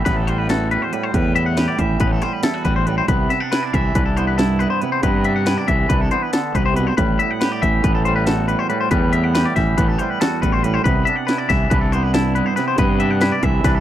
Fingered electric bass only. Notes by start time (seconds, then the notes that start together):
0.06 A1
1.14 E2
1.79 A1
2.01 A1
2.65 A1
3.08 C2
3.74 C2
3.95 C2
5.03 G2
5.68 C2
5.90 C2
6.55 C2
6.98 A1
7.62 A1
7.84 A1
8.91 E2
9.57 A1
9.78 A1
10.43 A1
10.85 C2
11.50 C2
11.71 C2
12.78 G2
13.43 C2
13.64 C2